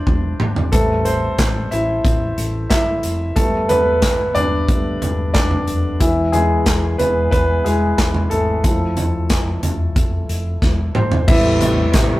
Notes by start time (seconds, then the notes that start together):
Already playing: F3 C4 D4 E4 C5 D5
0.07 E1, kick, high tom
0.40 G1, mid tom
0.56 floor tom
0.72 A1 G3 A3 C4 A4 B4, kick, closed hi-hat
1.05 C4 C5, closed hi-hat
1.38 A1, kick, snare, clap, closed hi-hat
1.71 A1 E4 E5, closed hi-hat
2.05 A1, kick, closed hi-hat
2.38 A1, closed hi-hat
2.70 G1 E4 E5, kick, snare, clap, closed hi-hat
3.03 F1, closed hi-hat
3.36 G1 G3 A3 B3 A4, kick, closed hi-hat
3.69 B3 B4, closed hi-hat, floor tom
4.02 G1, kick, snare, clap, closed hi-hat
4.35 G1 D4 D5, closed hi-hat, floor tom
4.69 G1 G3 A3 B3, kick, closed hi-hat
5.01 G1, closed hi-hat, floor tom
5.34 F1 D4 D5, kick, snare, clap, closed hi-hat
5.51 floor tom
5.67 F1, closed hi-hat
6.00 E1 E3 E4, kick, closed hi-hat
6.32 G#3 B3 E4 G#4, closed hi-hat, floor tom
6.66 E1, kick, snare, clap, closed hi-hat
6.98 E1 B3 B4, closed hi-hat, floor tom
7.31 E1 B3 B4, kick, closed hi-hat
7.64 E1 G#3 B3 E4 G#4, closed hi-hat
7.98 E1, kick, snare, clap, closed hi-hat
8.14 floor tom
8.30 G#1 A3 A4, closed hi-hat
8.64 F1 F3 C4 E4, kick, closed hi-hat
8.97 closed hi-hat, floor tom
9.30 F1, kick, snare, clap, closed hi-hat
9.63 F1, closed hi-hat, floor tom
9.96 F1, kick, closed hi-hat
10.29 F1, closed hi-hat
10.62 E1, kick, snare
10.95 G1 C4 C5, mid tom
11.12 floor tom
11.28 A1 C3 G3 A3 B3 E4 E5, kick, crash
11.61 floor tom, hi-hat pedal, open hi-hat
11.94 A1, kick, snare, clap, hi-hat pedal, open hi-hat